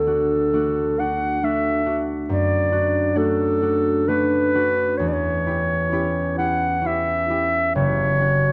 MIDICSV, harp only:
0, 0, Header, 1, 2, 480
1, 0, Start_track
1, 0, Tempo, 906344
1, 755, Tempo, 877193
1, 1230, Time_signature, 3, 2, 24, 8
1, 1715, Tempo, 914634
1, 4519, End_track
2, 0, Start_track
2, 0, Title_t, "Harp"
2, 0, Program_c, 0, 46
2, 0, Note_on_c, 0, 38, 31
2, 36, Note_on_c, 0, 62, 24
2, 39, Note_on_c, 0, 66, 24
2, 277, Note_off_c, 0, 62, 0
2, 280, Note_on_c, 0, 57, 23
2, 281, Note_off_c, 0, 66, 0
2, 283, Note_on_c, 0, 62, 25
2, 287, Note_on_c, 0, 66, 24
2, 518, Note_off_c, 0, 62, 0
2, 520, Note_off_c, 0, 66, 0
2, 524, Note_on_c, 0, 62, 23
2, 527, Note_on_c, 0, 66, 25
2, 751, Note_off_c, 0, 57, 0
2, 752, Note_off_c, 0, 62, 0
2, 754, Note_off_c, 0, 66, 0
2, 756, Note_on_c, 0, 57, 22
2, 759, Note_on_c, 0, 62, 24
2, 761, Note_on_c, 0, 66, 25
2, 985, Note_off_c, 0, 62, 0
2, 986, Note_off_c, 0, 66, 0
2, 990, Note_on_c, 0, 62, 23
2, 995, Note_on_c, 0, 66, 27
2, 1229, Note_on_c, 0, 42, 32
2, 1253, Note_off_c, 0, 38, 0
2, 1457, Note_off_c, 0, 66, 0
2, 1458, Note_off_c, 0, 62, 0
2, 1463, Note_on_c, 0, 62, 26
2, 1465, Note_on_c, 0, 66, 28
2, 1693, Note_off_c, 0, 57, 0
2, 1695, Note_off_c, 0, 62, 0
2, 1698, Note_off_c, 0, 66, 0
2, 1699, Note_on_c, 0, 57, 25
2, 1702, Note_on_c, 0, 62, 26
2, 1705, Note_on_c, 0, 66, 26
2, 1939, Note_off_c, 0, 62, 0
2, 1943, Note_off_c, 0, 66, 0
2, 1945, Note_on_c, 0, 62, 25
2, 1949, Note_on_c, 0, 66, 24
2, 2180, Note_off_c, 0, 57, 0
2, 2184, Note_off_c, 0, 62, 0
2, 2186, Note_on_c, 0, 57, 25
2, 2187, Note_off_c, 0, 66, 0
2, 2190, Note_on_c, 0, 62, 24
2, 2194, Note_on_c, 0, 66, 27
2, 2427, Note_off_c, 0, 62, 0
2, 2427, Note_off_c, 0, 66, 0
2, 2432, Note_on_c, 0, 62, 25
2, 2436, Note_on_c, 0, 66, 27
2, 2667, Note_on_c, 0, 40, 36
2, 2685, Note_off_c, 0, 57, 0
2, 2688, Note_off_c, 0, 42, 0
2, 2689, Note_off_c, 0, 62, 0
2, 2689, Note_off_c, 0, 66, 0
2, 2914, Note_on_c, 0, 64, 26
2, 2918, Note_on_c, 0, 67, 29
2, 3149, Note_off_c, 0, 64, 0
2, 3151, Note_off_c, 0, 67, 0
2, 3152, Note_on_c, 0, 61, 28
2, 3157, Note_on_c, 0, 64, 27
2, 3158, Note_on_c, 0, 67, 27
2, 3391, Note_off_c, 0, 64, 0
2, 3393, Note_off_c, 0, 67, 0
2, 3396, Note_on_c, 0, 64, 27
2, 3401, Note_on_c, 0, 67, 28
2, 3621, Note_off_c, 0, 61, 0
2, 3623, Note_on_c, 0, 61, 25
2, 3632, Note_off_c, 0, 67, 0
2, 3633, Note_off_c, 0, 64, 0
2, 3639, Note_on_c, 0, 64, 25
2, 3653, Note_on_c, 0, 67, 29
2, 3871, Note_off_c, 0, 64, 0
2, 3873, Note_off_c, 0, 67, 0
2, 3877, Note_on_c, 0, 64, 26
2, 3879, Note_on_c, 0, 67, 30
2, 4115, Note_on_c, 0, 30, 36
2, 4136, Note_off_c, 0, 40, 0
2, 4137, Note_off_c, 0, 64, 0
2, 4138, Note_off_c, 0, 67, 0
2, 4345, Note_off_c, 0, 61, 0
2, 4351, Note_on_c, 0, 61, 28
2, 4357, Note_on_c, 0, 66, 30
2, 4519, Note_off_c, 0, 30, 0
2, 4519, Note_off_c, 0, 61, 0
2, 4519, Note_off_c, 0, 66, 0
2, 4519, End_track
0, 0, End_of_file